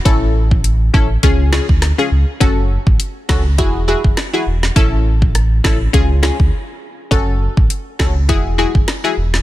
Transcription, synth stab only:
X:1
M:4/4
L:1/16
Q:"Swing 16ths" 1/4=102
K:F#m
V:1 name="Synth stab"
[CEA]4 z2 [CEA] z [C^EG]2 [CEG] z2 [CEG] z2 | [CFA]4 z2 [CFA] z [EFG]2 [EFG] z2 [EFG] z2 | [CEA]4 z2 [CEA] z [C^EG]2 [CEG] z4 z | [CFA]4 z2 [CFA] z [EFG]2 [EFG] z2 [EFG] z2 |]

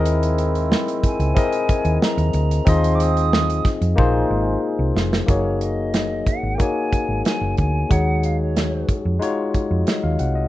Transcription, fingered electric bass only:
X:1
M:4/4
L:1/16
Q:1/4=92
K:Gblyd
V:1 name="Fingered electric bass" clef=bass
^D,,6 z _D,, z3 ^D,, z D,, =D,,2 | E,,6 z F,, B,,,2 A,,,2 z C,, F,,,2 | G,,,6 z A,,, z3 A,,, z G,,, =D,,2 | E,,6 z F,, z3 F,, z E,, C,,2 |]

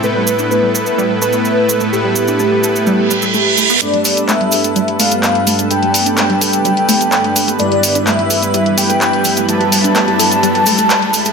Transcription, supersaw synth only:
X:1
M:4/4
L:1/8
Q:1/4=127
K:Gmix
V:1 name="Supersaw synth"
[A,,A,B,EAB]4- [A,,A,B,EAB] [A,,A,B,EAB]3 | [A,,A,B,EAB]4- [A,,A,B,EAB] z3 | [G,,A,B,DGA]4- [G,,A,B,DGA] [G,,A,B,DGA]3 | [G,,A,B,DGA]4- [G,,A,B,DGA] [G,,A,B,DGA]2 [A,B,DGA] |
[G,,G,B,EGB]4- [G,,G,B,EGB] [G,,G,B,EGB]3 | [G,,G,B,EGB]4- [G,,G,B,EGB] z3 |]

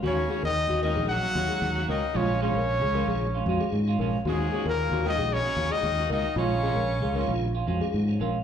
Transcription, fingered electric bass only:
X:1
M:4/4
L:1/16
Q:1/4=114
K:Bbphr
V:1 name="Fingered electric bass" clef=bass
E,,2 z E,,2 E,,2 B,,,2 z E,, z E,,2 D,, z | B,,,3 B,,,2 D,,2 B,,,3 F,, z A,,2 B,,, z | E,,2 z E,,2 E,,2 B,,,2 z E,, z E,,2 D,, z | B,,,3 B,,,2 D,,2 B,,,3 F,, z A,,2 B,,, z |]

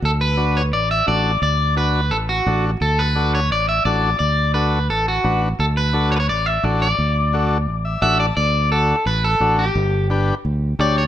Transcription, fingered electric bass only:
X:1
M:4/4
L:1/8
Q:1/4=173
K:D
V:1 name="Fingered electric bass" clef=bass
D,,4 A,,,2 A,,,2 | D,,4 A,,,2 A,,,2 | D,,4 A,,,2 A,,,2 | D,,4 A,,,2 A,,,2 |
D,,4 A,,,2 A,,,2 | D,,4 A,,,2 A,,,2 | D,,4 A,,,2 A,,,2 | G,,,4 D,,2 D,,2 |]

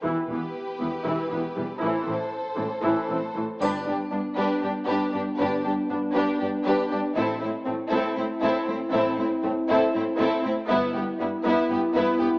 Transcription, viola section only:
X:1
M:7/8
L:1/8
Q:1/4=118
K:G
V:1 name="Viola section"
[E,E] [E,B,] z [E,B,] [E,E] [E,B,] [E,G,] | [E,E] [E,C] z [E,C] [E,E] [E,C] [E,A,] | D D D D D D D | D D D D D D D |
C C C C C C C | C C C C C C C | B, B, B, B, B, B, B, |]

